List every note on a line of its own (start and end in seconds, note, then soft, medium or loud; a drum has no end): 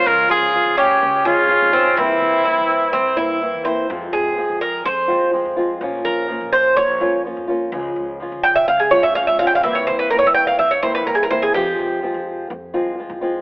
0.00 0.28 C#5 medium
0.05 0.29 C#2 loud
0.05 0.52 C#3 medium
0.05 0.52 F3 medium
0.05 0.53 G#3 medium
0.05 0.53 C#4 medium
0.05 0.30 F4 medium
0.05 0.54 F4 medium
0.05 0.30 A#4 loud
0.29 0.64 C#2 medium
0.29 0.76 F4 medium
0.29 0.75 F4 medium
0.29 0.75 G#4 loud
0.53 1.00 F3 medium
0.53 1.01 G#3 medium
0.53 1.01 C#4 medium
0.53 1.01 F4 medium
0.66 1.00 C#2 medium
0.77 1.24 C#4 loud
0.77 1.22 C#4 medium
0.77 1.22 G4 loud
1.02 1.25 C#2 loud
1.02 muted nylon-string guitar stroke medium
1.25 1.60 G#1 medium
1.25 1.48 F3 medium
1.25 1.48 G#3 medium
1.25 1.49 C#4 medium
1.25 1.99 C#4 medium
1.25 1.48 F4 medium
1.25 2.00 F4 loud
1.25 1.72 G#4 medium
1.49 1.72 F3 medium
1.49 1.73 G#3 medium
1.49 1.73 C#4 medium
1.49 1.72 F4 medium
1.62 1.96 G#1 medium
1.73 1.97 F3 medium
1.73 1.97 G#3 medium
1.73 1.96 C4 medium
1.73 1.97 C#4 medium
1.73 1.96 F4 medium
1.97 2.20 C2 loud
1.97 2.44 C3 medium
1.97 2.44 E3 medium
1.97 2.45 A#3 medium
1.97 2.44 C4 medium
1.97 3.41 C4 medium
1.97 2.45 C4 medium
1.97 3.42 E4 loud
1.97 2.45 E4 medium
2.22 2.56 C2 medium
2.45 2.92 E3 medium
2.45 2.93 A#3 soft
2.45 2.93 C4 medium
2.45 2.92 E4 medium
2.45 2.93 E4 medium
2.58 2.92 C2 medium
2.93 3.16 C2 medium
2.93 3.16 C4 medium
2.93 muted nylon-string guitar stroke medium
3.16 3.52 G2 medium
3.16 3.40 E3 medium
3.16 3.41 A#3 medium
3.16 3.40 C4 medium
3.16 3.40 E4 medium
3.16 3.64 E4 medium
3.41 3.64 E3 soft
3.41 3.65 A#3 medium
3.41 3.64 C4 medium
3.41 3.64 E4 medium
3.54 3.88 E2 medium
3.65 3.89 E3 medium
3.65 3.89 A#3 medium
3.65 3.88 C4 medium
3.65 3.88 E4 medium
3.65 3.88 C5 medium
3.89 4.12 F2 loud
3.89 4.36 C3 medium
3.89 4.35 F3 medium
3.89 4.36 G#3 medium
3.89 4.37 C4 medium
3.89 4.37 F4 medium
4.13 4.48 F2 medium
4.13 4.58 G#4 medium
4.36 4.84 F3 medium
4.36 4.84 G#3 medium
4.36 4.84 C4 medium
4.36 4.85 F4 medium
4.50 4.84 F2 medium
4.61 4.84 A#4 medium
4.85 5.08 F2 medium
4.85 5.30 C5 loud
4.85 muted nylon-string guitar stroke medium
5.08 5.43 C2 medium
5.08 5.32 F3 medium
5.08 5.32 G#3 medium
5.08 5.32 C4 medium
5.08 5.31 F4 medium
5.33 5.56 F3 medium
5.33 5.56 G#3 medium
5.33 5.57 C4 medium
5.33 5.55 F4 soft
5.45 5.79 F2 medium
5.57 5.79 F3 medium
5.57 5.80 G#3 medium
5.57 5.80 C4 medium
5.57 5.80 F4 medium
5.81 6.04 A#1 loud
5.81 6.27 F3 medium
5.81 6.28 A#3 medium
5.81 6.29 C#4 medium
5.81 6.29 F4 medium
6.05 6.39 A#1 medium
6.05 6.49 A#4 medium
6.28 6.75 F3 medium
6.28 6.76 A#3 medium
6.28 6.76 C#4 medium
6.28 6.76 F4 medium
6.41 6.75 A#1 medium
6.53 6.76 C5 loud
6.76 7.00 A#1 loud
6.76 7.21 C#5 medium
6.76 muted nylon-string guitar stroke medium
7.01 7.35 F2 medium
7.01 7.24 A#3 medium
7.01 7.24 C#4 medium
7.01 7.24 F4 medium
7.24 7.47 F3 soft
7.24 7.48 A#3 medium
7.24 7.48 C#4 medium
7.24 7.46 F4 medium
7.37 7.71 F2 medium
7.48 7.72 A#3 medium
7.48 7.72 C#4 medium
7.48 7.71 F4 medium
7.72 7.95 C#2 loud
7.72 8.19 C#3 medium
7.72 8.19 F3 medium
7.72 8.20 G#3 medium
7.72 8.20 C#4 medium
7.72 8.20 F4 medium
7.96 8.30 C#2 medium
8.20 8.67 F3 medium
8.20 8.67 G#3 medium
8.20 8.67 C#4 medium
8.20 8.67 F4 medium
8.32 8.66 C#2 medium
8.43 8.55 G5 loud
8.55 8.67 E5 medium
8.67 8.91 C#2 medium
8.67 8.79 F5 loud
8.67 muted nylon-string guitar stroke medium
8.79 8.91 G#4 medium
8.91 9.26 G#1 medium
8.91 9.14 F3 medium
8.91 9.15 G#3 medium
8.91 9.15 C#4 medium
8.91 9.14 F4 medium
8.91 9.03 C#5 medium
9.03 9.15 E5 medium
9.15 9.38 F3 soft
9.15 9.39 G#3 medium
9.15 9.39 C#4 medium
9.15 9.38 F4 medium
9.15 9.27 F5 loud
9.27 9.62 G#1 medium
9.27 9.39 E5 medium
9.39 9.63 F3 medium
9.39 9.63 G#3 medium
9.39 9.63 C#4 medium
9.39 9.63 F4 medium
9.39 9.47 F5 loud
9.47 9.55 G5 medium
9.55 9.63 F5 medium
9.63 9.86 C2 loud
9.63 10.10 C3 medium
9.63 10.11 E3 medium
9.63 10.11 A#3 medium
9.63 10.11 C4 medium
9.63 10.11 E4 medium
9.63 9.75 E5 medium
9.75 9.86 C#5 medium
9.87 10.22 C2 medium
9.87 9.99 C5 medium
9.99 10.10 B4 medium
10.10 10.58 E3 soft
10.10 10.59 A#3 medium
10.10 10.59 C4 medium
10.10 10.59 E4 medium
10.10 10.18 A#4 medium
10.19 10.27 C#5 medium
10.23 10.57 C2 medium
10.23 10.34 E5 medium
10.34 10.46 G5 loud
10.47 10.58 F5 medium
10.59 10.82 C2 loud
10.59 10.71 E5 medium
10.59 muted nylon-string guitar stroke medium
10.71 10.82 C#5 medium
10.82 11.05 A#1 medium
10.82 11.05 E3 medium
10.82 11.06 A#3 medium
10.82 11.06 C4 medium
10.82 11.06 E4 medium
10.82 10.94 C5 medium
10.95 11.06 B4 medium
11.06 11.29 C2 medium
11.06 11.30 E3 soft
11.06 11.30 A#3 medium
11.06 11.29 C4 medium
11.06 11.29 E4 medium
11.06 11.15 A#4 medium
11.15 11.23 G#4 medium
11.23 11.30 A#4 medium
11.30 11.52 E2 medium
11.30 11.55 E3 medium
11.30 11.54 A#3 medium
11.30 11.54 C4 medium
11.30 11.53 E4 medium
11.30 11.42 C5 loud
11.42 11.54 G#4 medium
11.54 11.77 F2 loud
11.54 12.02 C3 medium
11.54 12.01 F3 medium
11.54 12.02 G#3 medium
11.54 12.02 C4 medium
11.54 12.03 F4 medium
11.54 12.46 G4 medium
11.79 12.13 F2 medium
12.02 12.49 F3 medium
12.02 12.49 G#3 medium
12.02 12.50 C4 medium
12.02 12.50 F4 medium
12.14 12.48 F2 medium
12.50 12.73 F2 medium
12.50 muted nylon-string guitar stroke medium
12.74 13.08 C2 medium
12.74 12.96 F3 medium
12.74 12.97 G#3 medium
12.74 12.97 C4 medium
12.74 12.97 F4 medium
12.97 13.21 F3 soft
12.97 13.21 G#3 soft
12.97 13.21 C4 medium
12.97 13.20 F4 medium
13.09 13.41 C2 medium
13.21 13.41 F3 medium
13.21 13.41 G#3 medium
13.21 13.41 C4 medium
13.21 13.41 F4 medium